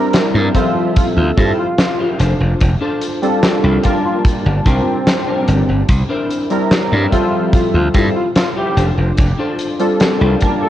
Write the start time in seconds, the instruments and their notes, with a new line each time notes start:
Already playing: synth keys G3 C4 D4 E4 A#4
0.14 snare, closed hi-hat
0.34 slap bass G2, clean electric guitar D4 E4 A#4 C5
0.54 synth keys F3 G3 C4 A4 E5, clean electric guitar E4 F4 G4 C5, soft synth lead F4, kick, closed hi-hat
0.96 soft synth lead F4, muted slap bass stroke, kick, closed hi-hat
1.17 slap bass D2, soft synth lead F4
1.37 slap bass G2, synth keys G3 C4 E4 F4 A4, clean electric guitar E4 F4 G4 C5, kick, closed hi-hat
1.58 soft synth lead F4
1.78 snare, closed hi-hat
1.99 clean electric guitar E4 F4 G4 C5
2.19 slap bass F1, clean electric guitar D4 F4 A4 C5, closed hi-hat
2.40 slap bass F1
2.60 slap bass F1, kick, closed hi-hat
2.81 clean electric guitar D4 F4 A4 C5
3.01 closed hi-hat
3.22 synth keys G3 C4 D4 F4 A4, closed hi-hat
3.43 snare, closed hi-hat
3.63 slap bass C2, clean electric guitar D4 F4 A4 C5
3.82 synth keys G3 A#3 D4 F4 A5, clean electric guitar D4 F4 G4 A#4, soft synth lead F4, kick, closed hi-hat
4.05 soft synth lead F4
4.25 kick, closed hi-hat
4.46 slap bass G1
4.66 slap bass C2, soft synth lead C4, clean electric guitar D4 F4 G4 A#4, kick, closed hi-hat
5.07 snare, closed hi-hat
5.27 clean electric guitar D4 F4 G4 A#4
5.48 slap bass G1, closed hi-hat
5.69 slap bass G1
5.89 slap bass C2, kick, closed hi-hat
6.09 clean electric guitar D4 E4 A#4 C5
6.31 closed hi-hat
6.50 synth keys G3 C4 D4 E4 A#4, closed hi-hat
6.71 snare, closed hi-hat
6.92 slap bass G2, clean electric guitar D4 E4 A#4 D5
7.11 synth keys F3 G3 C4 A4 E5, clean electric guitar E4 F4 G4 C5, soft synth lead F4, kick, closed hi-hat
7.53 soft synth lead F4, muted slap bass stroke, kick, closed hi-hat
7.74 slap bass D2, soft synth lead F4
7.94 slap bass G2, synth keys G3 C4 E4 F4 A4, clean electric guitar E4 F4 G4 C5, kick, closed hi-hat
8.16 soft synth lead F4
8.36 soft synth lead F4, snare, closed hi-hat
8.56 clean electric guitar E4 F4 G4 C5, soft synth lead G4
8.77 slap bass F1, clean electric guitar D4 F4 A4 C5, closed hi-hat
8.97 slap bass F1
9.17 slap bass F1, kick, closed hi-hat
9.38 clean electric guitar D4 F4 A4 C5
9.59 closed hi-hat
9.79 synth keys G3 C4 D4 F4 A4, closed hi-hat
10.00 snare, closed hi-hat
10.20 slap bass C2, clean electric guitar D4 F4 A4 C5
10.39 synth keys G3 A#3 D4 F4 A5, clean electric guitar D4 F4 G4 A#4, kick, closed hi-hat
10.62 soft synth lead A4